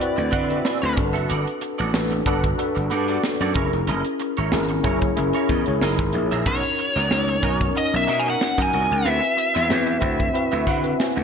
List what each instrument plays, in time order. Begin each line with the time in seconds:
Already playing: tine electric piano F#4 B4, lead electric guitar D5
0.00 tine electric piano C4 E4 F#4 B4, closed hi-hat
0.16 slap bass D2, muted clean electric guitar stroke, closed hi-hat
0.31 slap bass D3, clean electric guitar C4 F#4 B4 F#5, tine electric piano E5, kick, closed hi-hat
0.49 clean electric guitar C4 F#4 B4 E5, tine electric piano C4 E4 F#4 B4, closed hi-hat
0.64 clean electric guitar C4 F#4 B4 E5, tine electric piano G#5, snare
0.81 slap bass D2, muted clean electric guitar stroke, closed hi-hat
0.95 slap bass G1, tine electric piano D4 F#4 A4 A#4 A5, muted clean electric guitar stroke, kick, closed hi-hat
1.05 tine electric piano B4
1.13 slap bass F#1, clean electric guitar B3 F#4 A4 E5, closed hi-hat
1.28 slap bass G1, clean electric guitar B3 F#4 A4 D5, closed hi-hat
1.46 muted clean electric guitar stroke, closed hi-hat
1.61 muted clean electric guitar stroke, closed hi-hat
1.78 slap bass A1, clean electric guitar B3 F#4 A4 D5, closed hi-hat
1.94 slap bass A1, tine electric piano D4 F#4 A4 B4, snare
2.10 muted clean electric guitar stroke, closed hi-hat
2.26 slap bass G1, clean electric guitar B3 F#4 A4 D5, tine electric piano D4 F#4 A4 B4, kick, closed hi-hat
2.44 muted clean electric guitar stroke, kick, closed hi-hat
2.58 tine electric piano D4 F#4 A4 B4, muted clean electric guitar stroke, closed hi-hat
2.75 slap bass G1, muted clean electric guitar stroke, closed hi-hat
2.90 slap bass G2, clean electric guitar B3 F#4 A4 D5, closed hi-hat
3.08 clean electric guitar B3 F#4 A4 D5, tine electric piano D4 F#4 A4 D5, closed hi-hat
3.24 muted clean electric guitar stroke, snare
3.40 slap bass F#2, clean electric guitar B3 F#4 A4 D5, closed hi-hat
3.54 slap bass F#1, clean electric guitar C#4 E4 A#4 C#5, tine electric piano C#4 E4 G#4 A#4, kick, closed hi-hat
3.73 slap bass F1, muted clean electric guitar stroke, closed hi-hat
3.87 slap bass F#1, clean electric guitar C#4 E4 A#4 D#5, closed hi-hat
4.05 muted clean electric guitar stroke, closed hi-hat
4.20 muted clean electric guitar stroke, closed hi-hat
4.37 slap bass G#1, clean electric guitar C#4 E4 A#4 C#5, closed hi-hat
4.52 slap bass G#1, tine electric piano C#4 E4 G#4 A#4, snare
4.68 muted clean electric guitar stroke, closed hi-hat
4.83 slap bass F#1, tine electric piano C#4 E4 G#4 C#5, clean electric guitar C#4 E4 A#4 C#5, kick, closed hi-hat
5.01 muted clean electric guitar stroke, kick, closed hi-hat
5.16 slap bass F#1, tine electric piano C#4 E4 G#4 A#4, muted clean electric guitar stroke, closed hi-hat
5.33 clean electric guitar C#4 E4 A#4 C#5, closed hi-hat
5.49 slap bass E2, clean electric guitar C#4 E4 A#4 D#5, kick, closed hi-hat
5.66 slap bass C#2, tine electric piano C#4 E4 G#4 C#5, muted clean electric guitar stroke, closed hi-hat
5.81 slap bass F#1, tine electric piano D#4 E4 G#4 A#4, clean electric guitar E4 G#4 A#4 D#5, snare
5.99 slap bass G#1, muted clean electric guitar stroke, kick, closed hi-hat
6.13 slap bass A#1, tine electric piano D#4 E4 G#4 C#5, muted clean electric guitar stroke, closed hi-hat
6.31 slap bass A#1, clean electric guitar E4 G#4 A#4 E5, closed hi-hat
6.46 slap bass B1, tine electric piano C#4 D4 F#4 A#4, clean electric guitar C#4 F#4 A#4 D#5, lead electric guitar C#5, kick, closed hi-hat
6.53 tine electric piano D#4
6.63 muted clean electric guitar stroke, closed hi-hat
6.79 muted clean electric guitar stroke, closed hi-hat
6.96 slap bass C#2, clean electric guitar C#4 F#4 A#4 D#5, snare, closed hi-hat
7.11 slap bass C#2, tine electric piano C#4 D#4 F#4 C#5, snare
7.28 muted clean electric guitar stroke, closed hi-hat
7.43 slap bass B1, clean electric guitar C#4 F#4 A#4 D#5, tine electric piano C#4 D#4 F#4 A#4, kick, closed hi-hat
7.60 muted clean electric guitar stroke, kick, closed hi-hat
7.75 tine electric piano C#4 D#4 F#4 A#4, lead electric guitar D#5, muted clean electric guitar stroke, closed hi-hat
7.93 slap bass B1, lead electric guitar E5, muted clean electric guitar stroke, closed hi-hat
8.07 slap bass B2, clean electric guitar C#4 F#4 A#4 D#5, snare, closed hi-hat
8.19 lead electric guitar G#5
8.25 tine electric piano C#4 D#4 F#4 A#4, clean electric guitar C#4 F#4 A#4 D#5, closed hi-hat
8.30 lead electric guitar F#5
8.41 muted clean electric guitar stroke, snare
8.58 slap bass F#2, clean electric guitar C#4 F#4 A#4 D#5, kick, closed hi-hat
8.62 lead electric guitar G#5
8.72 slap bass C2, tine electric piano C#4 D#4 F#4 A#4, clean electric guitar C#4 F#4 A#4 D#5, closed hi-hat
8.91 slap bass C#2, lead electric guitar E5, muted clean electric guitar stroke, closed hi-hat
9.04 slap bass D2, tine electric piano C4 E4 F#4, clean electric guitar C4 F#4 B4 F#5, closed hi-hat
9.22 muted clean electric guitar stroke, closed hi-hat
9.37 muted clean electric guitar stroke, closed hi-hat
9.54 slap bass E2, clean electric guitar C4 F#4 B4 E5, snare, closed hi-hat
9.69 slap bass E2, tine electric piano C4 E4 F#4 B4, snare
9.87 muted clean electric guitar stroke, closed hi-hat
10.01 slap bass D2, tine electric piano C4 E4 F#4 C5, clean electric guitar C4 F#4 B4 E5, kick, closed hi-hat
10.19 muted clean electric guitar stroke, kick, closed hi-hat
10.34 tine electric piano C4 E4 F#4 B4, muted clean electric guitar stroke, closed hi-hat
10.52 slap bass D2, clean electric guitar C4 F#4 B4 E5, closed hi-hat
10.66 slap bass D3, clean electric guitar C4 F#4 B4 F#5, tine electric piano F#5, kick, snare, closed hi-hat
10.83 tine electric piano C4 E4 F#4 B4, muted clean electric guitar stroke, closed hi-hat
10.99 tine electric piano G#5, snare
11.16 slap bass D2, muted clean electric guitar stroke, closed hi-hat